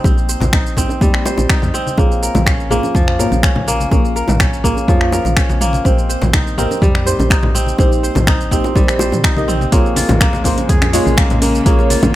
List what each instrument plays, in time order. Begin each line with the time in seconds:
Already playing: kora G3 D#4 C5
0.04 fm bass A#1, synth stab A#3 D#4 G4 C5, kora C4, kick, low bongo, shaker
0.18 shaker
0.29 kora C5, shaker
0.40 fm bass A#1, high bongo, high conga, low conga, shaker
0.53 kora D#4, finger snap, kick, shaker
0.66 shaker
0.77 fm bass A#1, synth stab A#3 D#4 G4 C5, kora C4, kick, low conga, shaker
0.89 low bongo, shaker
1.01 fm bass F2, kora G3, synth stab A#3 D#4 G4 C5, kick, shaker
1.14 finger snap
1.26 kora C5, high bongo, shaker
1.38 fm bass A#1, high bongo, shaker
1.50 kora D#4, finger snap, kick, shaker
1.62 fm bass F2, high conga, shaker
1.74 kora C4, high conga, shaker
1.87 high conga, shaker
1.98 fm bass A#1, synth stab A#3 F4 G#4 C#5, kora A#3, kick, low bongo, shaker
2.12 shaker
2.23 kora A#4, shaker
2.35 fm bass A#1, mid tom, high bongo, high conga, low conga, shaker
2.46 kora C#4, finger snap, kick, high conga, shaker
2.60 shaker
2.70 fm bass A#1, synth stab A#3 F4 G#4 C5, kora A#3, low conga, shaker
2.83 low bongo, shaker
2.95 fm bass F2, kora F3, kick, mid tom, shaker
3.08 finger snap
3.19 synth stab A#3 F4 G#4 C#5, kora A#4, low conga, shaker
3.32 fm bass A#1, low bongo, high conga, shaker
3.43 kora C#4, finger snap, kick, shaker
3.56 fm bass A#1, high conga, low conga
3.67 kora A#3, high conga, shaker
3.80 high conga, shaker
3.91 fm bass A#1, synth stab A#3 F4 G#4 C#5, kora A#3, kick, low bongo, shaker
4.05 shaker
4.16 kora A#4, shaker
4.28 fm bass A#1, mid tom, high bongo, high conga, low conga, shaker
4.40 kora C#4, finger snap, kick, high conga, shaker
4.53 shaker
4.64 fm bass A#1, kora A#3, synth stab A#3 F4 G#4 C#5, kick, low conga, shaker
4.77 low bongo, shaker
4.88 fm bass F2, kora F3, synth stab A#3 F4 G#4 C#5, kick, shaker
5.01 finger snap
5.12 kora A#4, high bongo, shaker
5.25 fm bass A#1, mid tom, high bongo, shaker
5.37 kora C#4, finger snap, kick, shaker
5.50 fm bass A#1, high conga, shaker
5.61 kora A#3, mid tom, high conga, shaker
5.73 high conga, shaker
5.85 fm bass A#1, synth stab A#3 D#4 G4 C5, kora C4, kick, low bongo, shaker
5.98 shaker
6.09 kora C5, shaker
6.22 fm bass A#1, mid tom, high bongo, high conga, low conga, shaker
6.33 kora D#4, finger snap, kick, high conga, shaker
6.47 shaker
6.58 fm bass A#1, synth stab A#3 D#4 G4 A#4, kora C4, low conga, shaker
6.71 low bongo, shaker
6.82 fm bass F2, kora G3, kick, mid tom, shaker
6.95 finger snap
7.06 synth stab A#3 D#4 G4 C5, kora C5, low conga, shaker
7.19 fm bass A#1, low bongo, high conga, shaker
7.30 kora D#4, finger snap, kick, shaker
7.43 fm bass A#1, high conga, low conga
7.54 kora C4, high conga, shaker
7.66 high conga, shaker
7.78 fm bass A#1, synth stab A#3 D#4 G4 C5, kora C4, kick, low bongo, shaker
7.92 shaker
8.03 kora C5, shaker
8.15 fm bass A#1, mid tom, high bongo, low bongo, high conga, low conga, shaker
8.27 kora D#4, finger snap, kick, high conga, shaker
8.41 shaker
8.51 fm bass A#1, synth stab A#3 D#4 G4 C5, kora C4, kick, low conga, shaker
8.64 high bongo, low bongo, shaker
8.76 fm bass A#1, kora G3, synth stab A#3 D#4 G4 C5, kick, shaker
8.88 finger snap, shaker
8.99 kora C5, high bongo, shaker
9.12 fm bass A#2, mid tom, high bongo, shaker
9.24 kora D#4, finger snap, kick, shaker
9.37 fm bass A#1, synth stab A#3 D#4 G4 D#5, high conga, shaker
9.48 kora C4, mid tom, high conga, shaker
9.61 high conga, shaker
9.72 fm bass A#1, string section C#3 G#3 A#3, kora A#3, synth stab A#3 F4 G#4 C#5, kick, closed hi-hat, shaker
9.86 shaker
9.96 kora F4, open hi-hat, low bongo, high conga, shaker
10.09 fm bass A#1, closed hi-hat, mid tom, high bongo, high conga, low conga, shaker
10.20 kora A#3, finger snap, kick, closed hi-hat, low bongo, shaker
10.33 high conga, shaker
10.44 fm bass A#1, synth stab A#3 F4 G#4 C5, kora A#3, kick, open hi-hat, low conga, shaker
10.58 closed hi-hat, low bongo, shaker
10.69 fm bass F2, kora G#4, kick, closed hi-hat, mid tom, shaker
10.82 finger snap, closed hi-hat, low bongo, shaker
10.93 kora G#3, synth stab A#3 F4 G#4 C#5, open hi-hat, low conga, shaker
11.06 fm bass A#1, high conga, shaker
11.17 kora A#3, finger snap, kick, closed hi-hat, low bongo, high conga, shaker
11.30 fm bass A#1, closed hi-hat, low conga, shaker
11.42 kora A#3, open hi-hat, low bongo, shaker
11.55 shaker
11.66 fm bass A#1, kora A#3, synth stab A#3 F4 G#4 C#5, kick, closed hi-hat, shaker
11.79 low bongo, shaker
11.90 kora F4, open hi-hat, high conga, shaker
12.03 fm bass A#1, closed hi-hat, mid tom, high bongo, low bongo, high conga, low conga, shaker